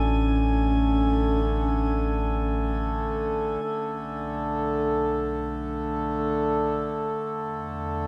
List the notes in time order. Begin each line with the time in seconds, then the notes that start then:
Already playing: A1 D3 A3 C#4 G#5
3.61 B1 D3 A3
7.20 E2